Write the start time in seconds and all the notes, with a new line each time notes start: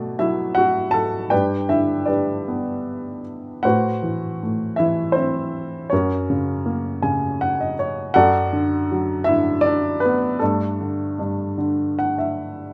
Already playing: B2 F#3 A3 D4 F#4 A4 D5
0.19 F#3 E4 E5
0.55 F#4 F#5
0.91 A4 A5
1.30 G2 G4 B4 D5 G5
1.69 D3 E4 E5
2.06 G3 D4 B4 D5
2.48 B3
3.63 A2 F#4 B4 C5 F#5
4.03 E3
4.43 A2
4.76 E3 E4 E5
5.12 C4 E4 C5
5.90 F#2 F#4 A#4 C#5
5.94 C#4
6.30 C#3
6.66 A#3
7.02 C#3 G#5
7.41 F#5
7.60 D#5
7.79 C#5
8.14 F#2 F#4 A4 D5 F#5
8.53 D3
8.92 F#3
9.24 E4 E5
9.29 D3
9.61 D5
9.66 D4
10.00 B4
10.06 B3
10.39 G2 A4
10.43 A3 D4
10.81 D3
11.19 G2
11.58 D3
11.99 F#5
12.18 E5